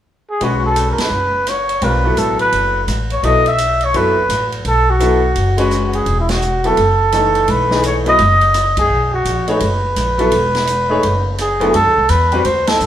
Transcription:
0.30 trumpet G#4
0.41 upright bass B1, upright piano G#3 C#4 F#4 B4, trumpet F#4, ride
0.66 trumpet A4
0.76 hi-hat pedal, ride
0.91 trumpet A#4
0.98 trumpet B4, muted upright bass stroke, snare, ride
1.11 upright bass F#1
1.47 trumpet C#5, cross-stick, hi-hat pedal, ride
1.69 ride
1.82 upright bass B1, upright piano G3 C4 F4 A#4, trumpet B4, ride
2.05 upright piano F#3 B3 E4 A4
2.17 upright bass A1, trumpet A4, hi-hat pedal, ride
2.39 trumpet B4, ride
2.52 upright bass F#1, ride
2.87 upright bass A1, cross-stick, hi-hat pedal, ride
3.10 trumpet C#5, ride
3.23 upright bass B1, upright piano F#3 B3 E4 A4, trumpet D#5, ride
3.46 trumpet E5, ride
3.58 hi-hat pedal, ride
3.81 trumpet C#5, ride
3.94 upright bass F#1, upright piano F#3 B3 E4 A4, trumpet B4, ride
4.29 upright bass A1, cross-stick, hi-hat pedal, ride
4.52 ride
4.65 upright bass B1, trumpet A4, ride
4.90 trumpet F#4
4.99 upright piano F#3 B3 E4 A4, hi-hat pedal, ride
5.35 upright bass F#1, ride
5.58 upright piano G#3 C#4 F#4 B4, ride
5.71 cross-stick, hi-hat pedal
5.85 trumpet F#4
5.93 trumpet G#4, ride
6.06 upright bass E1, ride
6.21 trumpet E4
6.29 trumpet F#4, snare, ride
6.42 hi-hat pedal
6.64 upright piano F#3 B3 E4 A4, trumpet A4, ride
6.77 upright bass F#1, ride
7.12 upright piano E3 A3 D#4 A4, cross-stick, hi-hat pedal, ride
7.35 ride
7.48 upright bass B1, trumpet B4, ride
7.71 upright piano E3 A3 D#4 G#4, snare
7.83 trumpet C#5, hi-hat pedal, ride
8.06 upright piano F#3 B3 E4 B4, trumpet D#5, ride
8.19 upright bass F#1, ride
8.41 ride
8.54 cross-stick, hi-hat pedal, ride
8.77 upright bass F#2, trumpet G#4, kick, ride
8.90 upright bass B1
9.13 trumpet F#4
9.25 upright bass A#1, hi-hat pedal, ride
9.47 upright piano A3 D#4 G#4 C#5, trumpet B4, ride
9.60 upright bass F#1, ride
9.96 upright bass A#1, cross-stick, hi-hat pedal, ride
10.18 upright piano F#3 B3 E4 A4, ride
10.31 upright bass E1, ride
10.55 snare, ride
10.67 hi-hat pedal, ride
10.89 upright piano A3 D#4 G#4 C#5
11.03 upright bass F#1, ride
11.38 trumpet G#4, cross-stick, hi-hat pedal, ride
11.60 upright piano D2 F#3 B3 E4 A4, ride
11.74 upright bass F#2, trumpet A4, ride
11.86 upright bass D2
11.97 upright bass C2
12.09 upright bass E2, trumpet B4, hi-hat pedal, ride
12.32 upright piano G3 C4 F#4 B4, ride
12.45 upright bass D2, trumpet C5, ride
12.67 trumpet A4, snare, ride
12.80 upright bass G2, hi-hat pedal

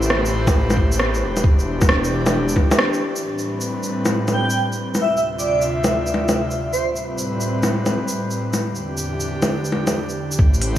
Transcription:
Already playing: detuned saw bass A1, analog synth pad A3 G4 B4 C5
0.03 shaker
0.10 cross-stick
0.26 shaker
0.33 detuned saw bass A1
0.47 kick, low bongo, shaker
0.70 low bongo, shaker
0.77 detuned saw bass A1, kick
0.92 shaker
1.00 cross-stick
1.15 shaker
1.22 detuned saw bass E1
1.37 low bongo, shaker
1.42 analog synth pad E3 D4 G4, kick
1.59 shaker
1.81 kick, low bongo, shaker
1.89 cross-stick
2.04 shaker
2.12 detuned saw bass E1
2.26 low bongo, shaker
2.49 shaker
2.56 kick, low bongo
2.71 low bongo, shaker
2.79 cross-stick
2.94 shaker
3.16 shaker
3.22 analog synth pad A2 G3 C4 B4
3.39 shaker
3.61 shaker
3.83 shaker
4.05 low bongo, shaker
4.28 low bongo, shaker
4.33 digital synth lead G5
4.50 shaker
4.72 shaker
4.95 low bongo, shaker
5.01 analog synth pad D2 C3 F4 E5, digital synth lead E5
5.17 digital synth lead E5, shaker
5.38 digital synth lead D5, shaker
5.62 shaker
5.84 low bongo, shaker
6.07 shaker
6.14 low bongo
6.29 low bongo, shaker
6.51 shaker
6.73 digital synth lead C5, shaker
6.80 analog synth pad A2 G3 C4 B4
6.96 shaker
7.18 shaker
7.41 shaker
7.63 low bongo, shaker
7.86 low bongo, shaker
8.08 shaker
8.31 shaker
8.54 low bongo, shaker
8.59 analog synth pad E2 D3 G4
8.75 shaker
8.97 shaker
9.20 shaker
9.42 low bongo, shaker
9.65 shaker
9.72 low bongo
9.87 low bongo, shaker
10.09 shaker
10.32 shaker
10.39 detuned saw bass A1, analog synth pad A3 G4 B4 C5, kick
10.54 shaker
10.61 open hi-hat

